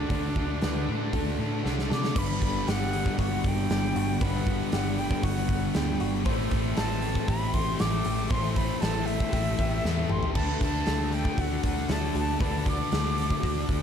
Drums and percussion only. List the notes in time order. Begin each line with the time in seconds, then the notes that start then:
0.10 kick, open hi-hat
0.36 kick
0.61 snare, open hi-hat
1.13 kick, open hi-hat
1.66 snare
1.79 snare
1.91 snare
2.04 snare
2.16 kick, crash
2.42 kick, open hi-hat
2.68 snare, open hi-hat
2.93 open hi-hat
3.06 kick
3.19 kick, open hi-hat
3.44 kick, open hi-hat
3.70 snare, open hi-hat
3.96 open hi-hat
4.21 kick, open hi-hat
4.47 kick, open hi-hat
4.72 snare, open hi-hat
4.98 open hi-hat
5.11 kick
5.23 kick, open hi-hat
5.48 kick, open hi-hat
5.74 snare, open hi-hat
6.00 open hi-hat
6.25 kick, open hi-hat
6.51 kick, open hi-hat
6.77 snare, open hi-hat
7.02 open hi-hat
7.15 kick
7.28 kick, open hi-hat
7.54 kick, open hi-hat
7.79 snare, open hi-hat
8.05 open hi-hat
8.30 kick, open hi-hat
8.56 kick, open hi-hat
8.82 snare, open hi-hat
9.08 open hi-hat
9.20 kick
9.33 kick, open hi-hat
9.59 kick, open hi-hat
9.85 snare
10.10 mid tom
10.23 floor tom
10.35 kick, crash
10.61 kick, open hi-hat
10.86 snare, open hi-hat
11.12 open hi-hat
11.25 kick
11.38 kick, open hi-hat
11.63 kick, open hi-hat
11.77 snare
11.89 snare, open hi-hat
12.15 open hi-hat
12.40 kick, open hi-hat
12.66 kick, open hi-hat
12.92 snare, open hi-hat
13.18 open hi-hat
13.30 kick
13.43 kick, open hi-hat
13.69 kick, open hi-hat